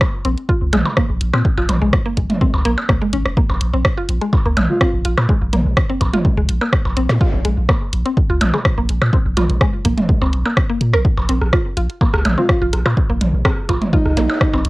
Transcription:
0.01 kick, cross-stick, percussion blips
0.25 A#1 C4, closed hi-hat
0.38 closed hi-hat
0.49 F4, kick
0.62 C#2
0.73 A#1 G#3, closed hi-hat, mid tom, percussion blips
0.86 percussion blips
0.97 A#3, kick, cross-stick
1.10 A#1
1.21 A#1, closed hi-hat
1.34 A#2 C4, cross-stick, percussion blips
1.45 kick
1.58 A#1 F4, percussion blips
1.69 A#1, closed hi-hat, mid tom, percussion blips
1.82 A#1 G#3
1.93 kick, cross-stick
2.06 A#3
2.17 A#1, kick, closed hi-hat
2.30 closed hi-hat, mid tom
2.41 C4, kick
2.54 C#2, percussion blips
2.65 A#1 A#3, closed hi-hat
2.78 percussion blips
2.89 C2 A#3, kick, cross-stick
3.02 G#3
3.13 G#1 C#4, closed hi-hat
3.26 F1, cross-stick
3.37 A#3, kick
3.50 A#1, percussion blips
3.61 A#1, closed hi-hat
3.74 A#1 C4
3.85 kick, cross-stick
3.98 F4
4.09 A#1, closed hi-hat
4.22 G#3, closed hi-hat
4.33 kick, percussion blips
4.46 C#2 A#3
4.57 A#1, closed hi-hat, mid tom, percussion blips
4.69 F4
4.81 C4 F4, kick, cross-stick
4.94 A#1
5.05 A#1 F4, closed hi-hat
5.17 A#2, cross-stick, percussion blips
5.29 G#3, kick
5.41 A#1
5.53 A#1 A#3, closed hi-hat, mid tom
5.66 A#1
5.77 kick, cross-stick
5.90 C4
6.01 A#1, kick, closed hi-hat, percussion blips
6.14 F4, closed hi-hat, mid tom
6.25 kick
6.38 C#2 G#3
6.49 A#1, closed hi-hat
6.62 A#3, percussion blips
6.73 kick, cross-stick
6.86 A#1, percussion blips
6.97 A#1 C4, closed hi-hat
7.10 A#2, cross-stick, zap
7.21 F4, kick
7.34 A#1
7.45 A#1 G#3, closed hi-hat
7.58 A#1
7.69 A#3, kick, cross-stick, percussion blips
7.93 A#1, closed hi-hat
8.06 C4, closed hi-hat
8.17 kick
8.30 C#2 F4
8.41 A#1, closed hi-hat, mid tom, percussion blips
8.54 G#3, percussion blips
8.65 kick, cross-stick
8.78 A#1 A#3
8.89 A#1, closed hi-hat
9.02 A#2, cross-stick, percussion blips
9.13 C4, kick
9.25 A#1
9.37 A#1 F4, closed hi-hat, mid tom, percussion blips
9.50 A#1, closed hi-hat
9.61 G#3, kick, cross-stick
9.85 A#1 A#3, kick, closed hi-hat
9.98 closed hi-hat, mid tom
10.09 kick
10.21 C#2 C4, percussion blips
10.33 A#1, closed hi-hat
10.46 A#3, percussion blips
10.57 kick, cross-stick
10.70 A#3
10.81 A#2, closed hi-hat
10.94 G#1 A#4, cross-stick
11.05 kick
11.18 A#1, percussion blips
11.29 A#1 C4, closed hi-hat
11.42 A#1, cross-stick
11.53 F4, kick, cross-stick
11.77 A#1 F4, closed hi-hat
11.90 closed hi-hat
12.01 A#3, kick, percussion blips
12.14 C#2, cross-stick
12.25 A#1, closed hi-hat, mid tom, percussion blips
12.38 C4 F4
12.49 F4, kick, cross-stick
12.62 A#1 F4
12.73 A#1, cross-stick, closed hi-hat
12.86 A#2 F4, cross-stick, percussion blips
12.97 kick
13.10 A#1 A#3
13.21 A#1, closed hi-hat, mid tom
13.34 A#1
13.45 C4, kick, cross-stick
13.69 A#1 F4, kick, closed hi-hat, percussion blips
13.82 closed hi-hat, mid tom
13.93 D#4 F4, kick
14.06 C#2, cross-stick
14.17 A#1 A#3, closed hi-hat, zap
14.30 percussion blips
14.41 kick, cross-stick
14.54 A#1 C4, percussion blips
14.65 A#1, closed hi-hat

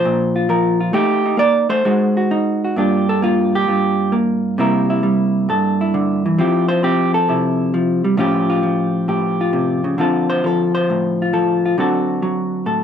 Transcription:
Already playing: F3 D4 C5
0.05 A#2
0.36 F4
0.49 F3 A#4
0.80 F4
0.93 A3 D#4 G4
1.26 D#4
1.37 A#3 D5
1.69 A3 C5
1.85 G#3 D#4 F#4
2.17 F#4
2.31 D#4
2.65 F#4
2.76 G2 A#3 D4 F4 G4
3.09 A4
3.22 A#3 F4
3.55 G4
3.68 G2 F4
4.12 A#3
4.58 C3 G3 A#3 E4 A#4
4.90 E4
5.03 G3
5.49 G2 A4
5.81 E4
5.94 D3
6.26 E3
6.38 F3 C4 E4 G4
6.68 C5
6.83 C4 G4
7.14 A4
7.29 C3 E4
7.74 F3
8.04 G3
8.17 A2 F3 C#4 F4 G4
8.50 F4
8.63 F3
9.08 A2 G4
9.41 F4
9.53 C3
9.84 C#3
9.98 D3 F3 C4 F4 A4
10.30 C5
10.44 F3 A4
10.75 C5
10.90 A2
11.22 F4
11.33 F3 A4
11.66 F4
11.78 D3 F#3 C4 F#4 A4
12.22 F#3
12.66 A2 A4

